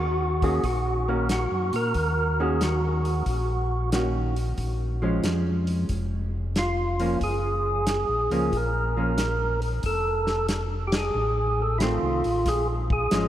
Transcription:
0.00 0.60 D#2 medium
0.00 0.34 D#3 soft
0.00 0.34 A#3 soft
0.00 0.35 C#4 soft
0.00 0.35 F#4 medium
0.00 0.45 F#4 medium
0.42 0.62 D#3 medium
0.42 0.62 A#3 medium
0.42 0.63 C#4 medium
0.42 0.63 F#4 medium
0.42 0.65 G#4 medium
0.42 kick soft
0.42 open hi-hat soft
0.64 1.48 A#1 medium
0.64 1.10 F#4 medium
0.64 kick soft
0.64 open hi-hat soft
1.08 1.28 D#3 soft
1.08 1.28 A#3 medium
1.08 1.28 C#4 medium
1.08 1.28 F#4 medium
1.08 1.29 A#4 medium
1.29 1.76 F#4 medium
1.29 snare medium
1.29 closed hi-hat medium
1.51 1.72 F#2 medium
1.73 1.94 A#2 medium
1.73 2.43 A#4 loud
1.73 open hi-hat soft
1.94 3.23 D#2 medium
1.94 kick soft
1.94 open hi-hat soft
2.40 2.59 D#3 medium
2.40 2.59 A#3 medium
2.40 2.59 C#4 medium
2.40 2.60 F#4 medium
2.40 2.63 G#4 medium
2.61 3.90 F#4 medium
2.61 snare medium
2.61 closed hi-hat soft
3.05 open hi-hat soft
3.26 4.54 A#1 medium
3.26 kick soft
3.26 open hi-hat soft
3.92 4.33 D#3 medium
3.92 4.33 A#3 medium
3.92 4.33 C#4 medium
3.92 4.33 F#4 medium
3.92 snare medium
3.92 closed hi-hat soft
4.36 open hi-hat soft
4.58 5.20 A#1 medium
4.58 kick soft
4.58 open hi-hat soft
5.02 5.85 F3 medium
5.02 5.86 G#3 medium
5.02 5.86 C#4 medium
5.23 5.85 F2 medium
5.23 snare medium
5.23 closed hi-hat soft
5.67 open hi-hat soft
5.89 7.17 F1 medium
5.89 kick soft
5.89 open hi-hat soft
6.56 7.19 F4 medium
6.56 snare medium
6.56 closed hi-hat soft
7.00 7.19 F3 medium
7.00 7.20 A#3 medium
7.00 7.20 C#4 medium
7.00 open hi-hat soft
7.21 8.05 F#1 medium
7.21 8.58 G#4 medium
7.21 kick soft
7.21 open hi-hat soft
7.87 snare medium
7.87 closed hi-hat soft
8.09 8.29 A#1 medium
8.30 8.51 C#2 medium
8.30 8.51 F3 medium
8.30 8.51 A#3 medium
8.30 8.51 C#4 medium
8.30 open hi-hat soft
8.52 9.80 A#1 medium
8.52 kick soft
8.52 open hi-hat soft
8.57 9.60 A#4 medium
8.97 9.16 F3 soft
8.97 9.17 A#3 medium
8.97 9.17 C#4 medium
9.18 snare medium
9.18 closed hi-hat medium
9.62 open hi-hat soft
9.83 11.11 F1 medium
9.83 10.47 A4 medium
9.83 kick soft
9.83 open hi-hat soft
10.27 snare soft
10.49 snare medium
10.49 closed hi-hat soft
10.87 10.95 G4 medium
10.92 snare medium
10.92 ride medium
10.97 11.63 G#4 medium
11.14 11.98 A1 medium
11.62 11.78 A4 medium
11.78 12.21 D#3 medium
11.78 12.21 A3 medium
11.78 12.21 C4 medium
11.78 11.82 E4 soft
11.78 12.49 F4 medium
11.78 snare medium
11.78 closed hi-hat medium
12.03 12.23 C2 medium
12.24 12.45 A1 medium
12.24 open hi-hat soft
12.46 13.08 A#1 medium
12.46 12.68 G#4 medium
12.46 kick soft
12.46 snare soft
12.46 open hi-hat soft
12.90 13.28 G#4 medium
12.90 kick medium
13.11 13.28 G#1 medium
13.11 13.28 F3 medium
13.11 13.28 G#3 medium
13.11 13.28 C#4 medium
13.11 snare medium
13.11 closed hi-hat soft

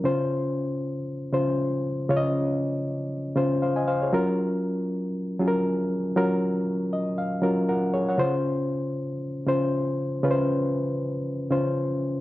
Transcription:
0.04 0.97 C#3 medium
0.04 0.98 C#4 medium
0.04 0.98 F4 medium
0.04 0.98 C5 loud
1.32 2.02 C#3 medium
1.32 2.02 C#4 medium
1.32 2.03 F4 medium
1.32 2.03 C5 medium
2.09 3.02 C#3 medium
2.09 3.02 C#4 medium
2.09 3.02 F4 medium
2.09 2.17 C#5 medium
2.17 3.06 D#5 loud
3.36 4.06 C#3 medium
3.36 4.06 C#4 medium
3.36 4.06 F4 medium
3.36 3.62 C5 medium
3.62 3.76 C5 medium
3.62 3.76 F5 medium
3.76 3.87 D#5 medium
3.76 3.87 G#5 medium
3.88 4.01 C5 medium
3.88 4.01 F5 medium
4.02 4.26 G#4 medium
4.02 4.26 C#5 medium
4.13 5.06 F#3 loud
4.13 5.06 C#4 medium
4.13 5.06 F4 medium
4.13 5.06 A#4 loud
5.40 6.09 F#3 medium
5.40 6.10 C#4 medium
5.40 6.10 F4 medium
5.40 5.48 G#4 medium
5.48 6.13 A#4 loud
6.16 7.09 F#3 loud
6.16 7.09 C#4 medium
6.16 7.10 F4 medium
6.16 7.10 A#4 loud
6.93 7.17 D#5 medium
7.18 7.65 F5 medium
7.42 8.12 F#3 medium
7.42 8.13 C#4 medium
7.42 7.68 F4 medium
7.42 7.67 A#4 medium
7.69 7.93 F4 soft
7.69 7.93 A#4 medium
7.69 8.07 F#5 medium
7.94 8.08 G#4 medium
7.94 8.08 C#5 medium
8.09 8.33 C#5 medium
8.09 8.33 F#5 medium
8.18 9.12 C#3 medium
8.18 9.12 C#4 medium
8.18 9.12 F4 medium
8.18 9.12 C5 loud
9.47 10.16 C#3 medium
9.47 10.17 C#4 medium
9.47 10.17 F4 medium
9.47 10.17 C5 loud
10.23 11.16 C#3 medium
10.23 11.16 C#4 medium
10.23 11.16 F4 medium
10.23 10.31 B4 medium
10.31 11.20 C5 loud
11.51 12.20 C#3 medium
11.51 12.20 C#4 medium
11.51 12.21 F4 medium
11.51 12.21 C5 medium

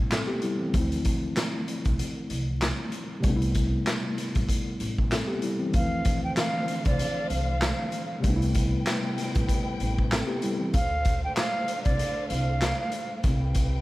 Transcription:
0.00 0.20 A1 medium
0.00 0.36 C3 medium
0.00 0.44 G3 medium
0.00 0.74 A3 medium
0.00 0.28 B3 medium
0.00 0.14 E4 medium
0.12 0.29 C4 medium
0.12 0.29 A4 medium
0.12 snare loud
0.12 clap loud
0.12 closed hi-hat medium
0.27 0.41 B3 medium
0.27 0.41 G4 medium
0.42 0.61 G3 medium
0.42 0.60 E4 medium
0.42 closed hi-hat medium
0.59 0.90 E3 medium
0.59 0.76 C4 medium
0.69 3.18 D3 medium
0.69 3.19 F3 medium
0.74 1.24 D2 loud
0.74 3.20 A3 medium
0.74 3.21 C4 medium
0.74 kick loud
0.74 closed hi-hat medium
0.79 3.23 E4 medium
0.92 closed hi-hat medium
1.05 kick medium
1.05 closed hi-hat medium
1.36 snare loud
1.36 clap medium
1.36 closed hi-hat medium
1.68 closed hi-hat medium
1.85 1.96 C2 medium
1.85 kick loud
1.85 closed hi-hat medium
1.99 closed hi-hat medium
2.30 2.70 C2 medium
2.30 closed hi-hat medium
2.62 snare loud
2.62 clap loud
2.62 closed hi-hat medium
2.92 closed hi-hat medium
3.20 5.37 C3 medium
3.20 5.07 G3 medium
3.20 closed hi-hat medium
3.24 3.74 C2 loud
3.24 5.08 A3 medium
3.24 5.09 B3 medium
3.24 kick loud
3.30 3.34 D4 medium
3.36 5.14 E4 medium
3.42 closed hi-hat medium
3.55 kick medium
3.55 closed hi-hat medium
3.86 snare loud
3.86 clap medium
3.86 closed hi-hat medium
4.18 snare soft
4.18 closed hi-hat medium
4.35 4.46 A1 medium
4.35 kick loud
4.35 closed hi-hat medium
4.49 kick loud
4.49 closed hi-hat medium
4.80 5.20 A1 medium
4.80 closed hi-hat medium
4.98 kick medium
5.12 5.29 C4 medium
5.12 5.29 A4 medium
5.12 snare loud
5.12 clap loud
5.12 closed hi-hat medium
5.27 5.41 B3 medium
5.27 5.41 G4 medium
5.42 5.61 G3 medium
5.42 5.60 E4 medium
5.42 closed hi-hat medium
5.59 5.79 E3 medium
5.59 5.76 C4 medium
5.70 8.18 D3 medium
5.70 8.21 D3 medium
5.70 8.19 F3 medium
5.70 8.21 A3 medium
5.70 8.21 C5 medium
5.70 8.21 F5 loud
5.70 closed hi-hat medium
5.74 6.24 D2 loud
5.74 8.20 A3 medium
5.74 8.22 C4 medium
5.74 6.21 F5 medium
5.74 kick loud
5.80 8.23 E3 medium
6.05 kick loud
6.05 closed hi-hat medium
6.24 6.35 G5 medium
6.36 6.83 F5 medium
6.36 snare loud
6.36 clap medium
6.36 closed hi-hat medium
6.68 closed hi-hat medium
6.85 6.97 C2 medium
6.85 7.28 D5 medium
6.85 kick loud
6.85 closed hi-hat medium
6.99 closed hi-hat medium
7.30 7.70 C2 medium
7.30 8.20 F5 medium
7.30 closed hi-hat medium
7.62 snare loud
7.62 clap loud
7.62 closed hi-hat medium
7.92 closed hi-hat medium
8.20 10.37 C3 medium
8.20 10.71 C3 medium
8.20 10.07 G3 medium
8.20 13.81 A3 medium
8.20 10.71 B4 medium
8.20 10.71 G5 medium
8.20 closed hi-hat medium
8.24 8.74 C2 loud
8.24 10.08 A3 medium
8.24 10.09 B3 medium
8.24 kick loud
8.30 8.34 D4 medium
8.36 10.14 E4 loud
8.42 closed hi-hat medium
8.54 kick loud
8.54 closed hi-hat medium
8.86 snare loud
8.86 clap medium
8.86 closed hi-hat medium
9.18 snare soft
9.18 closed hi-hat medium
9.35 9.46 A1 loud
9.35 kick loud
9.35 closed hi-hat medium
9.49 kick loud
9.49 closed hi-hat medium
9.80 10.20 A1 loud
9.80 closed hi-hat medium
9.98 kick medium
10.12 10.29 C4 medium
10.12 10.29 A4 medium
10.12 snare loud
10.12 clap loud
10.12 closed hi-hat medium
10.27 10.41 B3 medium
10.27 10.41 G4 medium
10.42 10.60 G3 medium
10.42 10.60 E4 medium
10.42 closed hi-hat medium
10.59 10.73 E3 medium
10.59 10.72 C4 medium
10.74 11.25 D2 loud
10.74 13.22 D3 medium
10.74 13.22 C5 medium
10.74 13.22 F5 medium
10.74 11.21 F5 loud
10.74 kick loud
10.74 closed hi-hat medium
11.05 kick loud
11.05 closed hi-hat medium
11.24 11.36 G5 medium
11.36 11.83 F5 medium
11.36 snare loud
11.36 clap loud
11.36 closed hi-hat medium
11.68 closed hi-hat medium
11.84 11.97 C2 medium
11.84 12.26 D5 medium
11.84 kick loud
11.84 closed hi-hat medium
11.99 closed hi-hat medium
12.29 12.70 C2 medium
12.29 13.20 F5 medium
12.29 closed hi-hat medium
12.62 snare loud
12.62 clap loud
12.62 closed hi-hat medium
12.92 closed hi-hat medium
13.22 13.74 C2 loud
13.22 13.81 C3 medium
13.22 13.81 B4 medium
13.22 13.81 G5 medium
13.22 kick loud
13.22 closed hi-hat medium
13.54 kick loud
13.54 closed hi-hat medium

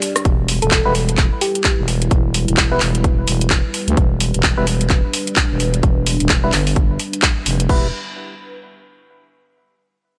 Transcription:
0.00 0.21 G3 medium
0.00 0.21 D4 medium
0.00 0.24 D5 medium
0.00 open hi-hat loud
0.00 shaker medium
0.16 cross-stick medium
0.16 closed hi-hat medium
0.16 shaker soft
0.25 0.60 E1 loud
0.25 7.65 G3 medium
0.25 3.94 E4 medium
0.25 7.65 B4 medium
0.25 kick loud
0.25 closed hi-hat medium
0.48 open hi-hat loud
0.62 0.83 E1 medium
0.62 0.68 A4 medium
0.62 closed hi-hat medium
0.71 0.81 A4 medium
0.71 kick loud
0.71 clap loud
0.71 closed hi-hat medium
0.85 1.30 E1 loud
0.85 0.94 G3 medium
0.85 0.94 B3 medium
0.85 0.94 E4 medium
0.85 0.94 B4 medium
0.95 open hi-hat loud
1.09 closed hi-hat medium
1.18 kick loud
1.18 clap medium
1.18 closed hi-hat medium
1.41 1.88 G4 loud
1.41 open hi-hat loud
1.55 closed hi-hat medium
1.64 kick loud
1.64 clap loud
1.64 closed hi-hat medium
1.78 2.10 E1 loud
1.88 open hi-hat loud
2.02 closed hi-hat medium
2.11 2.46 E1 loud
2.11 kick loud
2.11 closed hi-hat medium
2.34 open hi-hat loud
2.48 2.79 E1 medium
2.48 closed hi-hat medium
2.57 kick loud
2.57 clap loud
2.57 closed hi-hat medium
2.72 2.80 G3 medium
2.72 2.80 B3 medium
2.72 2.80 E4 medium
2.72 2.80 B4 loud
2.80 3.26 E1 medium
2.80 clap medium
2.80 open hi-hat loud
2.95 closed hi-hat medium
3.04 kick loud
3.04 closed hi-hat medium
3.27 3.62 E1 loud
3.27 open hi-hat loud
3.41 closed hi-hat medium
3.50 kick loud
3.50 clap loud
3.50 closed hi-hat medium
3.74 open hi-hat loud
3.88 3.96 D2 loud
3.88 closed hi-hat medium
3.97 4.32 E1 loud
3.97 7.66 D4 medium
3.97 kick loud
3.97 closed hi-hat soft
4.20 open hi-hat loud
4.34 4.55 E1 medium
4.34 closed hi-hat medium
4.43 kick loud
4.43 clap loud
4.43 closed hi-hat medium
4.57 5.02 E1 loud
4.57 4.66 G3 medium
4.57 4.66 B3 medium
4.57 4.66 E4 medium
4.57 4.66 B4 medium
4.67 open hi-hat loud
4.81 closed hi-hat medium
4.90 kick loud
4.90 clap medium
4.90 closed hi-hat medium
5.13 open hi-hat loud
5.27 closed hi-hat medium
5.36 kick loud
5.36 clap loud
5.36 closed hi-hat medium
5.51 5.82 E1 loud
5.60 open hi-hat loud
5.74 closed hi-hat medium
5.83 6.18 E1 loud
5.83 kick loud
5.83 closed hi-hat soft
6.06 open hi-hat loud
6.20 6.52 E1 loud
6.20 closed hi-hat medium
6.29 kick loud
6.29 clap loud
6.29 closed hi-hat medium
6.44 6.52 G3 medium
6.44 6.52 B3 medium
6.44 6.52 E4 medium
6.44 6.52 B4 loud
6.52 6.98 G1 medium
6.52 clap medium
6.52 open hi-hat loud
6.67 open hi-hat medium
6.76 kick loud
6.76 closed hi-hat medium
7.00 open hi-hat loud
7.13 closed hi-hat medium
7.22 kick loud
7.22 clap loud
7.22 closed hi-hat medium
7.46 7.68 F1 loud
7.46 open hi-hat loud
7.60 closed hi-hat medium
7.69 7.91 E1 loud
7.69 7.88 G3 medium
7.69 7.87 B3 medium
7.69 7.87 E4 medium
7.69 7.87 B4 medium
7.69 kick loud
7.69 crash medium

